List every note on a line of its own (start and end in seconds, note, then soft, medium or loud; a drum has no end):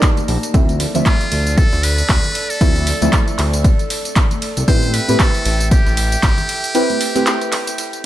0.00 0.50 A#3 medium
0.00 0.50 D#4 medium
0.00 0.51 D#4 medium
0.00 0.51 G4 medium
0.00 0.52 A#4 medium
0.00 0.52 D5 loud
0.00 0.52 A5 medium
0.00 kick loud
0.00 snare loud
0.00 clap loud
0.00 closed hi-hat medium
0.00 ride medium
0.00 tambourine medium
0.17 closed hi-hat soft
0.17 tambourine soft
0.17 high conga medium
0.17 low conga medium
0.28 0.38 A#1 loud
0.28 open hi-hat medium
0.28 ride medium
0.43 closed hi-hat medium
0.43 tambourine medium
0.54 0.86 D2 medium
0.54 0.91 F3 medium
0.54 0.91 A3 medium
0.54 0.91 C4 medium
0.54 0.91 E4 medium
0.54 8.05 A4 medium
0.54 4.64 D5 medium
0.54 kick loud
0.54 closed hi-hat medium
0.54 ride medium
0.54 tambourine medium
0.69 closed hi-hat soft
0.69 tambourine soft
0.69 high conga medium
0.80 snare soft
0.80 open hi-hat loud
0.80 ride medium
0.94 1.02 D2 medium
0.94 2.58 F3 medium
0.94 2.58 A3 medium
0.94 2.58 C4 medium
0.94 2.59 E5 medium
0.94 snare soft
0.94 closed hi-hat soft
0.94 tambourine medium
0.94 high conga medium
1.06 1.59 F4 loud
1.06 kick loud
1.06 snare loud
1.06 clap loud
1.06 closed hi-hat medium
1.06 ride medium
1.06 tambourine medium
1.21 closed hi-hat soft
1.21 ride soft
1.21 tambourine soft
1.32 1.64 D2 medium
1.32 open hi-hat medium
1.32 ride medium
1.47 closed hi-hat medium
1.47 tambourine medium
1.58 1.85 A4 loud
1.58 kick loud
1.58 closed hi-hat medium
1.58 ride medium
1.58 tambourine medium
1.73 2.03 D2 loud
1.73 snare medium
1.73 tambourine soft
1.83 2.52 B4 loud
1.83 open hi-hat loud
1.83 ride medium
1.98 closed hi-hat medium
1.98 tambourine medium
2.09 2.19 D2 medium
2.09 kick loud
2.09 snare loud
2.09 clap loud
2.09 closed hi-hat medium
2.09 ride medium
2.09 tambourine medium
2.24 closed hi-hat soft
2.24 tambourine soft
2.24 low conga medium
2.35 open hi-hat medium
2.35 ride medium
2.50 3.28 A4 loud
2.50 closed hi-hat medium
2.50 tambourine medium
2.61 2.93 D2 loud
2.61 2.98 F3 medium
2.61 2.98 A3 medium
2.61 2.98 C4 medium
2.61 2.98 E4 loud
2.61 kick loud
2.61 closed hi-hat medium
2.61 ride loud
2.61 tambourine medium
2.76 closed hi-hat soft
2.76 tambourine soft
2.76 high conga medium
2.87 open hi-hat loud
2.87 ride medium
3.01 3.09 D2 medium
3.01 4.65 F3 medium
3.01 4.65 A3 medium
3.01 4.65 C4 medium
3.01 4.66 E4 medium
3.01 closed hi-hat medium
3.01 ride soft
3.01 tambourine medium
3.01 high conga medium
3.13 kick loud
3.13 snare loud
3.13 clap loud
3.13 closed hi-hat medium
3.13 ride medium
3.13 tambourine medium
3.28 closed hi-hat soft
3.28 tambourine soft
3.39 3.70 D2 medium
3.39 clap medium
3.39 open hi-hat medium
3.39 ride medium
3.53 snare soft
3.53 closed hi-hat medium
3.53 tambourine medium
3.64 kick loud
3.64 closed hi-hat medium
3.64 ride medium
3.64 tambourine medium
3.79 closed hi-hat soft
3.79 tambourine soft
3.90 open hi-hat loud
3.90 ride medium
4.05 closed hi-hat medium
4.05 tambourine medium
4.16 kick loud
4.16 snare loud
4.16 clap loud
4.16 closed hi-hat medium
4.16 ride medium
4.16 tambourine medium
4.31 closed hi-hat soft
4.31 tambourine soft
4.31 high conga medium
4.31 low conga medium
4.42 open hi-hat medium
4.42 ride medium
4.57 4.64 C2 medium
4.57 closed hi-hat medium
4.57 tambourine medium
4.68 5.00 A1 loud
4.68 5.05 C4 medium
4.68 5.05 E4 medium
4.68 5.05 G4 medium
4.68 5.05 B4 loud
4.68 4.95 C5 loud
4.68 8.05 E5 medium
4.68 8.05 G5 medium
4.68 kick loud
4.68 closed hi-hat medium
4.68 ride medium
4.68 tambourine medium
4.83 closed hi-hat soft
4.83 tambourine soft
4.83 high conga medium
4.94 5.21 B4 loud
4.94 snare medium
4.94 open hi-hat loud
4.94 ride medium
5.08 5.16 A1 loud
5.08 6.72 C4 medium
5.08 6.72 E4 medium
5.08 6.72 G4 medium
5.08 6.72 B4 medium
5.08 snare soft
5.08 closed hi-hat medium
5.08 tambourine medium
5.08 high conga medium
5.20 5.71 A4 loud
5.20 kick loud
5.20 snare loud
5.20 clap loud
5.20 closed hi-hat medium
5.20 ride medium
5.20 tambourine medium
5.34 closed hi-hat soft
5.34 ride soft
5.34 tambourine soft
5.45 5.77 A1 medium
5.45 open hi-hat medium
5.45 ride medium
5.60 closed hi-hat medium
5.60 tambourine medium
5.71 8.05 G4 loud
5.71 kick loud
5.71 closed hi-hat medium
5.71 ride medium
5.71 tambourine medium
5.86 6.16 A1 loud
5.86 snare medium
5.86 tambourine soft
5.97 open hi-hat loud
5.97 ride medium
6.12 closed hi-hat medium
6.12 tambourine medium
6.23 6.32 A1 medium
6.23 kick loud
6.23 snare loud
6.23 clap loud
6.23 closed hi-hat medium
6.23 ride medium
6.23 tambourine medium
6.38 closed hi-hat soft
6.38 tambourine soft
6.38 low conga medium
6.49 open hi-hat medium
6.49 ride medium
6.64 closed hi-hat medium
6.64 tambourine medium
6.75 7.12 C4 medium
6.75 7.12 E4 medium
6.75 7.12 G4 medium
6.75 7.12 B4 loud
6.75 closed hi-hat medium
6.75 ride medium
6.75 tambourine medium
6.90 closed hi-hat soft
6.90 tambourine soft
6.90 high conga medium
7.01 open hi-hat loud
7.01 ride medium
7.15 8.02 C4 medium
7.15 8.02 E4 medium
7.15 8.02 G4 medium
7.15 8.02 B4 medium
7.15 closed hi-hat medium
7.15 ride soft
7.15 tambourine medium
7.15 high conga medium
7.27 snare loud
7.27 clap loud
7.27 closed hi-hat medium
7.27 ride medium
7.27 tambourine medium
7.41 closed hi-hat soft
7.41 tambourine soft
7.52 snare loud
7.52 clap medium
7.52 open hi-hat medium
7.52 ride medium
7.67 closed hi-hat medium
7.67 ride soft
7.67 tambourine medium
7.78 closed hi-hat medium
7.78 ride medium
7.78 tambourine medium
7.93 closed hi-hat soft
7.93 tambourine soft